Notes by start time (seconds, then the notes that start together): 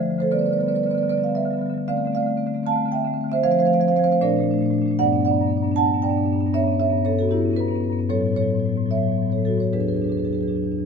Already playing: F3 C5 E5
0.00 D3 A3
0.06 D3 F3
0.10 A3
0.14 D3 F3
0.19 A3 A4 C5
0.23 F3
0.31 D3 G3 B3 B4 D5
0.39 D3 G3 B3 B4 D5
0.46 G3 B3 B4 D5
0.51 D3 B4 D5
0.55 G3 B3
0.59 D3 B3 B4 D5
0.67 D3 G3 B3 B4 D5
0.75 D3 G3 B3 B4 D5
0.83 D3 G3 B3 B4 D5
0.90 G3 B4 D5
0.95 D3 B3 B4 D5
1.01 D3 G3 B3
1.08 D3 G3 B3 B4 D5
1.17 D3 G3 B3
1.24 G3 B3 D5 F5
1.29 D3
1.34 D3 G3 B3 B4 E5
1.43 D3 G3 B3
1.50 D3 G3 B3
1.57 G3 B3
1.62 D3
1.66 G3 B3
1.70 D3
1.74 G3 B3
1.78 D3
1.88 D3 A3 C4 D5 F5
1.97 D3 A3 C4
2.05 D3 A3 C4
2.12 A3 C4 F5
2.16 D3 D5
2.21 A3 C4
2.26 D3 C4
2.31 A3
2.36 D3 A3 C4
2.46 D3 A3 C4
2.54 D3 A3 C4
2.63 D3 A3 C4 F5 A5
2.72 A3 C4
2.76 D3
2.80 A3 C4
2.86 D3 C4
2.91 D3 A3 E5 G5
2.97 A3 C4
3.05 D3 A3 C4
3.13 D3 C4
3.18 A3 C4
3.24 D3 A3
3.29 D3 C4 C5 E5
3.36 A3
3.43 F3 A3 C4 C5 F5
3.51 F3 A3 C4 C5 F5
3.59 F3 A3 C4 C5 F5
3.65 A3 C4 C5 F5
3.71 F3 C4 C5 F5
3.76 A3
3.80 F3 C4 C5 F5
3.84 A3 C5
3.89 F3 A3 C4 F5
3.96 F3 A3 C4 C5 F5
4.04 F3 C4 C5 F5
4.08 A3 F5
4.12 C4 C5
4.21 A#2 A3 D4 A#4 D5
4.29 A#2 A3 D4
4.37 A3 D4
4.41 A#2 D4
4.46 A3
4.50 A#2 A3 D4
4.58 A#2 D4
4.62 A3 D4
4.70 A#2 A3 D4
4.78 A#2 A3 D4
4.86 A3 D4
4.91 A#2
4.99 G2 B3 D4 D5 F#5
5.06 G2 B3 D4
5.13 B3 D4
5.19 G2 B3 D4
5.25 D4 D5 F#5
5.31 G2 B3
5.36 B3 D4
5.41 G2 D4
5.47 B3 D4
5.52 G2
5.56 B3 D4
5.62 G2 B3 D4
5.71 G2 B3 D4
5.76 D4 F#5 A5
5.80 G2 B3
5.87 B3 D4
5.93 G2 B3 D4
6.02 G2 B3 D4 D5 G5
6.09 G2 B3 D4
6.17 B3 D4
6.24 G2 B3 D4
6.32 G2 B3 D4
6.39 B3 D4
6.46 G2 B3 D4
6.54 G2 B3 C#4 C#5 E5
6.60 G2 B3 C#4
6.67 B3 C#4
6.73 G2 C#4
6.80 B3 C#4 C#5 E5
6.84 G2
6.90 G2 B3 C#4
6.97 B3 C#4
7.02 G2 C#4 A4 C#5
7.07 B3
7.12 G2 B3 C#4
7.19 G2 C#4 F#4 A4
7.24 B3
7.29 G2 B3 C#4 E4 G4
7.37 C#4
7.41 G2 B3
7.45 C#4
7.51 G2 B3 C#4
7.56 B3 C#4 G4 B4
7.61 G2
7.68 G2 B3 C#4
7.75 B3 C#4
7.81 G2 B3 C#4
7.90 G2 B3 C#4
7.99 G2 B3 C#4
8.09 A2 F#3 B3 A4 C#5
8.16 F#3 B3
8.21 A2
8.25 F#3 B3
8.32 A2 F#3 B3
8.36 A4 C#5
8.42 A2 F#3 B3
8.50 F#3 B3
8.55 A2 B3
8.60 F#3
8.66 A2 F#3 B3
8.75 A2 F#3 B3
8.83 A2 F#3 B3
8.91 B3 C#5 E5
8.95 A2 F#3
9.00 F#3 B3
9.07 A2 B3
9.12 F#3
9.17 A2 B3
9.22 F#3 B3
9.27 A2 F#3
9.32 B3 A4 C#5
9.38 A2 F#3
9.43 B3 F#4 A4
9.48 A2 F#3 B3
9.57 A2 F#3 B3 C#5
9.62 A4
9.73 E2 F#3 D4 G#4 B4
9.80 F#3 D4 G#4 B4
9.85 E2 D4 G#4 B4
9.90 F#3
9.94 E2 F#3 D4 G#4 B4
10.02 D4 G#4 B4
10.06 E2 F#3 D4 G#4
10.12 F#3 B4
10.17 E2 D4 G#4 B4
10.23 F#3 D4 G#4 B4
10.31 E2 F#3 D4 G#4 B4
10.39 F#3 D4 G#4 B4
10.44 E2 F#3
10.48 D4 G#4
10.55 E2 F#3 D4
10.63 F#3 D4
10.67 E2
10.71 F#3 D4
10.78 E2 F#3 D4